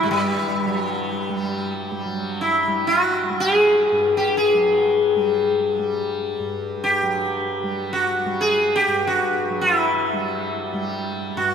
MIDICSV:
0, 0, Header, 1, 3, 480
1, 0, Start_track
1, 0, Tempo, 500000
1, 11084, End_track
2, 0, Start_track
2, 0, Title_t, "Sitar"
2, 0, Program_c, 0, 104
2, 30, Note_on_c, 0, 56, 56
2, 99, Note_off_c, 0, 56, 0
2, 104, Note_on_c, 0, 55, 74
2, 1652, Note_off_c, 0, 55, 0
2, 2314, Note_on_c, 0, 64, 64
2, 2753, Note_off_c, 0, 64, 0
2, 2757, Note_on_c, 0, 66, 81
2, 3230, Note_off_c, 0, 66, 0
2, 3266, Note_on_c, 0, 68, 93
2, 3966, Note_off_c, 0, 68, 0
2, 4004, Note_on_c, 0, 67, 75
2, 4193, Note_off_c, 0, 67, 0
2, 4197, Note_on_c, 0, 68, 72
2, 5760, Note_off_c, 0, 68, 0
2, 6563, Note_on_c, 0, 67, 74
2, 7607, Note_off_c, 0, 67, 0
2, 7611, Note_on_c, 0, 66, 78
2, 8071, Note_on_c, 0, 68, 80
2, 8087, Note_off_c, 0, 66, 0
2, 8406, Note_on_c, 0, 67, 85
2, 8419, Note_off_c, 0, 68, 0
2, 8707, Note_off_c, 0, 67, 0
2, 8711, Note_on_c, 0, 66, 80
2, 9226, Note_off_c, 0, 66, 0
2, 9230, Note_on_c, 0, 64, 68
2, 10450, Note_off_c, 0, 64, 0
2, 10916, Note_on_c, 0, 66, 76
2, 11084, Note_off_c, 0, 66, 0
2, 11084, End_track
3, 0, Start_track
3, 0, Title_t, "Tanpura"
3, 0, Program_c, 1, 104
3, 0, Note_on_c, 1, 54, 59
3, 0, Note_on_c, 1, 55, 57
3, 47, Note_on_c, 1, 43, 58
3, 626, Note_off_c, 1, 54, 0
3, 630, Note_on_c, 1, 54, 55
3, 1242, Note_off_c, 1, 55, 0
3, 1242, Note_on_c, 1, 55, 61
3, 1839, Note_off_c, 1, 55, 0
3, 1839, Note_on_c, 1, 55, 65
3, 1971, Note_off_c, 1, 54, 0
3, 1971, Note_on_c, 1, 54, 52
3, 2569, Note_off_c, 1, 55, 0
3, 2569, Note_on_c, 1, 55, 53
3, 3166, Note_off_c, 1, 55, 0
3, 3166, Note_on_c, 1, 55, 52
3, 3761, Note_off_c, 1, 43, 0
3, 3764, Note_on_c, 1, 43, 58
3, 4360, Note_off_c, 1, 54, 0
3, 4360, Note_on_c, 1, 54, 55
3, 4954, Note_off_c, 1, 55, 0
3, 4954, Note_on_c, 1, 55, 55
3, 5556, Note_off_c, 1, 55, 0
3, 5556, Note_on_c, 1, 55, 58
3, 6136, Note_off_c, 1, 43, 0
3, 6140, Note_on_c, 1, 43, 58
3, 6741, Note_off_c, 1, 54, 0
3, 6745, Note_on_c, 1, 54, 50
3, 7327, Note_off_c, 1, 55, 0
3, 7327, Note_on_c, 1, 55, 54
3, 7929, Note_off_c, 1, 55, 0
3, 7929, Note_on_c, 1, 55, 53
3, 8515, Note_off_c, 1, 43, 0
3, 8518, Note_on_c, 1, 43, 51
3, 9117, Note_off_c, 1, 54, 0
3, 9121, Note_on_c, 1, 54, 60
3, 9721, Note_off_c, 1, 55, 0
3, 9721, Note_on_c, 1, 55, 53
3, 10306, Note_off_c, 1, 55, 0
3, 10306, Note_on_c, 1, 55, 59
3, 10902, Note_off_c, 1, 43, 0
3, 10906, Note_on_c, 1, 43, 58
3, 11084, Note_off_c, 1, 43, 0
3, 11084, Note_off_c, 1, 54, 0
3, 11084, Note_off_c, 1, 55, 0
3, 11084, End_track
0, 0, End_of_file